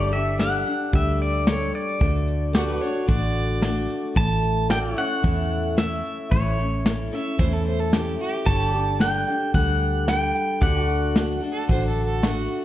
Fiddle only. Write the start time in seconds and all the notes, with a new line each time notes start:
2.56 F#4
2.68 B4
2.82 C#5
3.08 D5
7.13 E5
7.39 C5
7.53 A4
7.66 C5
7.80 A4
7.93 G4
8.20 G4
11.52 A4
11.70 C5
11.87 A4
12.06 A4
12.23 F#4